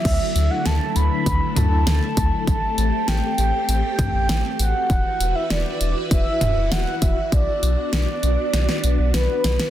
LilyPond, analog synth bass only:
\new Staff \with { instrumentName = "Analog synth bass" } { \clef bass \time 4/4 \key e \minor \tempo 4 = 99 d,16 r16 d,16 r16 d,16 r16 d,16 r16 d,16 r16 d,16 d,16 d,16 r16 d,16 r16 | a,,16 r16 a,,16 r16 a,,16 r16 a,,16 r16 a,,16 r16 a,,16 a,,16 a,,16 r16 a,,16 r16 | e,,16 r16 e,,16 r16 e,,16 r16 e,,16 r16 e,,16 r16 e,,16 e,,16 e,,16 r16 e,,16 r16 | b,,16 r16 b,,16 r16 b,,16 r16 b,,16 r16 b,,16 r16 b,,16 b,,16 b,,16 r16 b,,16 r16 | }